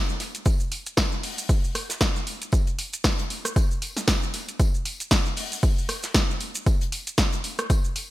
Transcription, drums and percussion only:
0.09 maracas
0.20 snare, open hi-hat, tambourine
0.35 closed hi-hat, maracas
0.45 kick, closed hi-hat, tambourine, maracas
0.60 maracas
0.71 open hi-hat, tambourine
0.86 closed hi-hat, maracas
0.97 kick, snare, closed hi-hat, tambourine, maracas
1.12 maracas
1.23 open hi-hat
1.38 closed hi-hat, maracas
1.49 kick, closed hi-hat, tambourine, maracas
1.64 maracas
1.75 cross-stick, open hi-hat, tambourine
1.90 snare, closed hi-hat, maracas
2.01 kick, snare, closed hi-hat, tambourine, maracas
2.16 snare, maracas
2.27 open hi-hat, tambourine
2.42 closed hi-hat, maracas
2.52 kick, closed hi-hat, tambourine, maracas
2.67 closed hi-hat, maracas
2.79 open hi-hat, tambourine
2.93 closed hi-hat, maracas
3.04 kick, snare, closed hi-hat, tambourine, maracas
3.19 closed hi-hat, maracas
3.30 open hi-hat, tambourine
3.45 cross-stick, closed hi-hat, maracas
3.56 kick, closed hi-hat, tambourine, maracas
3.71 maracas
3.82 open hi-hat, tambourine
3.97 snare, closed hi-hat, maracas
4.08 kick, snare, closed hi-hat, tambourine, maracas
4.23 maracas
4.34 snare, open hi-hat, tambourine
4.49 closed hi-hat, maracas
4.59 kick, closed hi-hat, tambourine, maracas
4.75 maracas
4.85 open hi-hat, tambourine
5.00 closed hi-hat, maracas
5.11 kick, snare, closed hi-hat, tambourine, maracas
5.26 maracas
5.37 open hi-hat
5.52 closed hi-hat, maracas
5.63 kick, closed hi-hat, tambourine, maracas
5.78 maracas
5.89 cross-stick, open hi-hat, tambourine
6.03 snare, closed hi-hat, maracas
6.14 kick, snare, closed hi-hat, tambourine, maracas
6.30 snare, maracas
6.40 open hi-hat, tambourine
6.55 closed hi-hat, maracas
6.66 kick, closed hi-hat, tambourine, maracas
6.81 closed hi-hat, maracas
6.92 open hi-hat, tambourine
7.07 closed hi-hat, maracas
7.18 kick, snare, closed hi-hat, tambourine, maracas
7.33 closed hi-hat, maracas
7.44 open hi-hat, tambourine
7.58 cross-stick, closed hi-hat, maracas
7.70 kick, closed hi-hat, tambourine, maracas
7.84 maracas
7.96 open hi-hat, tambourine

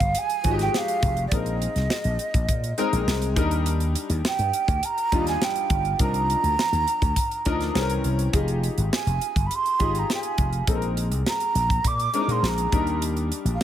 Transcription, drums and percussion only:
0.00 kick, closed hi-hat
0.15 closed hi-hat
0.30 closed hi-hat
0.44 kick, closed hi-hat
0.59 snare, closed hi-hat
0.74 snare
0.88 closed hi-hat
1.03 kick, closed hi-hat
1.17 closed hi-hat
1.31 kick, closed hi-hat
1.46 closed hi-hat
1.62 closed hi-hat
1.76 snare, closed hi-hat
1.90 snare
2.04 closed hi-hat
2.19 closed hi-hat
2.34 kick, closed hi-hat
2.49 kick, closed hi-hat
2.64 closed hi-hat
2.78 closed hi-hat
2.93 closed hi-hat
3.08 snare
3.22 closed hi-hat
3.36 kick, closed hi-hat
3.51 closed hi-hat
3.66 closed hi-hat
3.80 closed hi-hat
3.95 closed hi-hat
4.10 closed hi-hat
4.25 snare
4.39 closed hi-hat
4.53 closed hi-hat
4.68 kick, closed hi-hat
4.83 closed hi-hat
4.98 closed hi-hat
5.12 kick, closed hi-hat
5.27 snare, closed hi-hat
5.42 snare
5.56 closed hi-hat
5.70 kick, closed hi-hat
5.85 closed hi-hat
5.99 kick, closed hi-hat
6.14 closed hi-hat
6.30 closed hi-hat
6.44 closed hi-hat
6.59 snare
6.73 closed hi-hat
6.88 closed hi-hat
7.02 kick, closed hi-hat
7.16 kick, closed hi-hat
7.31 closed hi-hat
7.45 kick, closed hi-hat
7.61 snare, closed hi-hat
7.75 snare
7.90 closed hi-hat
8.04 closed hi-hat
8.19 closed hi-hat
8.33 kick, closed hi-hat
8.48 closed hi-hat
8.63 closed hi-hat
8.78 closed hi-hat
8.93 snare
9.07 closed hi-hat
9.21 closed hi-hat
9.36 kick, closed hi-hat
9.51 closed hi-hat
9.66 closed hi-hat
9.80 kick, closed hi-hat
9.95 closed hi-hat
10.10 snare
10.23 closed hi-hat
10.38 kick, closed hi-hat
10.53 closed hi-hat
10.67 kick, closed hi-hat
10.82 closed hi-hat
10.97 closed hi-hat
11.12 closed hi-hat
11.26 snare
11.40 closed hi-hat
11.55 closed hi-hat
11.70 kick, closed hi-hat
11.84 kick, closed hi-hat
11.99 closed hi-hat
12.14 closed hi-hat
12.29 closed hi-hat
12.44 snare
12.58 closed hi-hat
12.72 kick, closed hi-hat
12.87 closed hi-hat
13.02 closed hi-hat
13.17 closed hi-hat
13.32 closed hi-hat
13.46 closed hi-hat

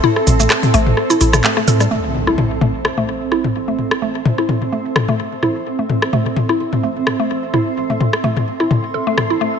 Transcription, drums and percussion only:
0.04 high tom
0.16 cross-stick
0.27 open hi-hat, mid tom, shaker
0.40 high tom, shaker
0.50 cross-stick, clap
0.63 open hi-hat, mid tom
0.74 open hi-hat
0.87 high tom
0.97 cross-stick
1.10 open hi-hat, shaker
1.21 open hi-hat, high tom, shaker
1.33 cross-stick, mid tom, shaker
1.44 clap
1.57 cross-stick
1.68 open hi-hat, high tom, shaker
1.80 cross-stick, shaker
2.15 open hi-hat, high tom
2.27 cross-stick
2.38 mid tom
2.51 open hi-hat
2.61 open hi-hat, mid tom, high tom
2.85 cross-stick
2.98 open hi-hat, high tom, shaker
3.08 open hi-hat
3.32 cross-stick
3.44 high tom
3.55 open hi-hat, shaker
3.68 shaker
3.79 high tom
3.91 cross-stick
4.02 open hi-hat, shaker
4.15 shaker
4.26 mid tom, high tom
4.38 cross-stick, open hi-hat
4.49 open hi-hat, mid tom
4.62 high tom
4.85 open hi-hat, shaker
4.96 cross-stick, mid tom
5.08 high tom
5.43 cross-stick, open hi-hat, high tom, shaker
5.55 shaker
5.90 open hi-hat, high tom
6.02 cross-stick
6.13 mid tom
6.26 open hi-hat, high tom
6.36 open hi-hat, mid tom
6.49 cross-stick
6.73 open hi-hat, high tom, shaker
6.83 open hi-hat, shaker
7.07 cross-stick, high tom
7.30 open hi-hat, shaker
7.43 shaker
7.54 cross-stick, high tom
7.77 open hi-hat, shaker
7.90 high tom, shaker
8.01 mid tom
8.13 cross-stick
8.24 open hi-hat, mid tom
8.37 high tom
8.60 cross-stick, open hi-hat, shaker
8.71 open hi-hat, mid tom, high tom, shaker
9.18 cross-stick, high tom
9.30 shaker

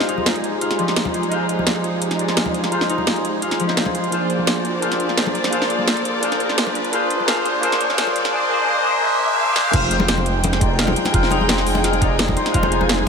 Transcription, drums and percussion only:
0.00 snare
0.09 closed hi-hat
0.18 high conga
0.26 snare, closed hi-hat
0.36 closed hi-hat
0.44 closed hi-hat
0.61 closed hi-hat
0.71 snare, closed hi-hat
0.79 closed hi-hat
0.88 snare
0.96 snare, closed hi-hat
1.05 high conga
1.14 closed hi-hat
1.23 closed hi-hat
1.32 closed hi-hat
1.49 closed hi-hat
1.59 high conga
1.67 snare, closed hi-hat
1.84 closed hi-hat
2.02 closed hi-hat
2.11 snare, closed hi-hat
2.19 closed hi-hat
2.28 snare
2.37 snare, closed hi-hat
2.46 high conga
2.54 closed hi-hat
2.64 snare, closed hi-hat
2.72 closed hi-hat
2.81 snare
2.90 closed hi-hat
2.98 high conga
3.07 snare, closed hi-hat
3.16 closed hi-hat
3.25 closed hi-hat
3.42 closed hi-hat
3.51 snare, closed hi-hat
3.60 closed hi-hat
3.69 snare
3.77 snare, closed hi-hat
3.86 high conga
3.95 closed hi-hat
4.04 closed hi-hat
4.12 closed hi-hat
4.30 closed hi-hat
4.39 high conga
4.47 snare, closed hi-hat
4.65 closed hi-hat
4.82 closed hi-hat
4.92 snare, closed hi-hat
5.00 closed hi-hat
5.09 snare
5.18 snare, closed hi-hat
5.26 high conga
5.35 closed hi-hat
5.44 snare, closed hi-hat
5.53 closed hi-hat
5.62 snare
5.70 closed hi-hat
5.79 high conga
5.88 snare, closed hi-hat
5.97 closed hi-hat
6.05 closed hi-hat
6.23 closed hi-hat
6.32 snare, closed hi-hat
6.40 closed hi-hat
6.49 snare
6.58 snare, closed hi-hat
6.67 high conga
6.75 closed hi-hat
6.85 closed hi-hat
6.93 closed hi-hat
7.10 closed hi-hat
7.20 high conga
7.28 snare, closed hi-hat
7.46 closed hi-hat
7.63 closed hi-hat
7.72 snare, closed hi-hat
7.81 closed hi-hat
7.90 snare
7.98 snare, closed hi-hat
8.07 high conga
8.16 closed hi-hat
8.25 snare, closed hi-hat
9.56 snare
9.73 kick, closed hi-hat, crash, muted conga
9.91 closed hi-hat
10.00 muted conga, high conga
10.08 snare, closed hi-hat
10.18 muted conga
10.26 closed hi-hat
10.44 closed hi-hat, muted conga
10.53 snare, closed hi-hat
10.61 kick, closed hi-hat, muted conga
10.79 snare, closed hi-hat
10.87 muted conga, high conga
10.96 closed hi-hat
11.05 snare, closed hi-hat, muted conga
11.14 kick, closed hi-hat
11.23 snare
11.31 closed hi-hat, muted conga
11.41 high conga
11.49 snare, closed hi-hat, muted conga
11.58 snare
11.66 open hi-hat
11.75 muted conga
11.84 snare, closed hi-hat
11.93 closed hi-hat, muted conga
12.02 kick, closed hi-hat
12.19 snare, closed hi-hat, muted conga
12.28 kick, high conga
12.37 closed hi-hat, muted conga
12.46 snare, closed hi-hat
12.54 kick, closed hi-hat
12.63 muted conga
12.72 closed hi-hat
12.81 muted conga, high conga
12.89 snare, closed hi-hat

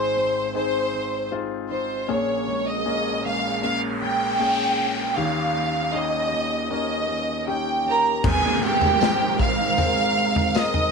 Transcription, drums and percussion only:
8.24 kick, floor tom, crash
8.63 tambourine
8.81 floor tom, tambourine
9.01 snare, tambourine
9.39 kick, tambourine
9.78 floor tom, tambourine
9.97 tambourine
10.36 floor tom
10.55 snare, tambourine
10.74 floor tom, tambourine

